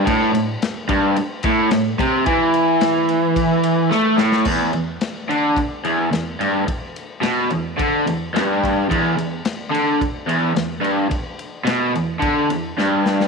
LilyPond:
<<
  \new Staff \with { instrumentName = "Overdriven electric guitar" } { \clef bass \time 4/4 \key a \lydian \tempo 4 = 108 a,8 a,8 r8 g,8 r8 a,8 a,8 c8 | e2. a8 a,8 | e,8 e,8 r8 d8 r8 e,8 e,8 g,8 | r4 b,8 e,8 d8 e,8 g,4 |
e,8 e,8 r8 d8 r8 e,8 e,8 g,8 | r4 b,8 e,8 d8 e,8 g,4 | }
  \new DrumStaff \with { instrumentName = "Drums" } \drummode { \time 4/4 <bd cymr>8 cymr8 <cymr sn>8 <bd cymr>8 cymr8 <bd cymr>8 <cymr sn>8 <bd cymr>8 | <bd cymr>8 cymr8 <cymr sn>8 cymr8 <bd cymr>8 cymr8 sn8 sn16 sn16 | <cymc bd>8 cymr8 <cymr sn>8 cymr8 <bd cymr>8 cymr8 <cymr sn>8 cymr8 | <bd cymr>8 cymr8 <cymr sn>8 cymr8 <bd cymr>8 cymr8 <cymr sn>8 <bd cymr>8 |
<bd cymr>8 cymr8 <cymr sn>8 cymr8 <bd cymr>8 cymr8 <cymr sn>8 cymr8 | <bd cymr>8 cymr8 <cymr sn>8 cymr8 <bd cymr>8 cymr8 sn8 sn16 sn16 | }
>>